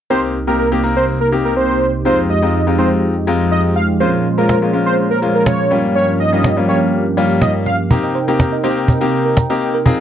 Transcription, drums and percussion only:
4.49 cajon slap
5.46 cajon slap
6.44 cajon slap
7.42 cajon slap
7.66 cajon slap
7.91 cajon bass
8.40 cajon bass, cajon slap
8.88 cajon bass
9.37 cajon bass, cajon slap
9.86 cajon bass

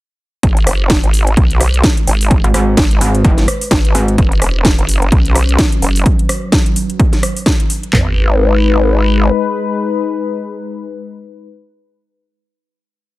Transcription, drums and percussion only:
0.43 kick, closed hi-hat
0.57 closed hi-hat
0.67 cross-stick, open hi-hat
0.90 kick, snare, closed hi-hat
1.04 closed hi-hat
1.14 open hi-hat
1.27 closed hi-hat
1.37 kick, closed hi-hat
1.51 closed hi-hat
1.61 cross-stick, open hi-hat
1.74 closed hi-hat
1.84 kick, snare, closed hi-hat
1.97 closed hi-hat
2.07 open hi-hat
2.21 open hi-hat
2.31 kick, closed hi-hat
2.44 closed hi-hat
2.54 cross-stick, open hi-hat
2.77 kick, snare, closed hi-hat
2.91 closed hi-hat
3.01 open hi-hat
3.15 closed hi-hat
3.25 kick, closed hi-hat
3.38 snare, closed hi-hat
3.48 cross-stick, open hi-hat
3.61 open hi-hat
3.71 kick, snare, closed hi-hat
3.85 closed hi-hat
3.95 open hi-hat
4.08 closed hi-hat
4.18 kick, closed hi-hat
4.32 closed hi-hat
4.42 cross-stick, open hi-hat
4.65 kick, snare, closed hi-hat
4.79 closed hi-hat
4.89 open hi-hat
5.02 closed hi-hat
5.12 kick, closed hi-hat
5.26 closed hi-hat
5.35 cross-stick, open hi-hat
5.49 closed hi-hat
5.59 kick, snare, closed hi-hat
5.72 closed hi-hat
5.82 open hi-hat
5.96 open hi-hat
6.06 kick, closed hi-hat
6.19 closed hi-hat
6.29 cross-stick, open hi-hat
6.52 kick, snare, closed hi-hat
6.66 closed hi-hat
6.76 open hi-hat
6.90 closed hi-hat
7.00 kick, closed hi-hat
7.13 snare, closed hi-hat
7.23 cross-stick, open hi-hat
7.37 open hi-hat
7.46 kick, snare, closed hi-hat
7.60 closed hi-hat
7.70 open hi-hat
7.83 closed hi-hat
7.93 kick, clap, floor tom

